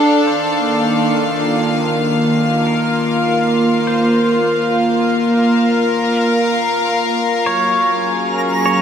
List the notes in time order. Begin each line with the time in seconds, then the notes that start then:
Already playing: D4 A4 D5 F5
0.26 D#3 C5
0.57 A#3
1.31 F4
2.67 A#4
3.87 C5
5.01 A#4
5.34 F5
7.46 F#3 C#5 A#5
7.96 C#4 G#4
8.66 C#5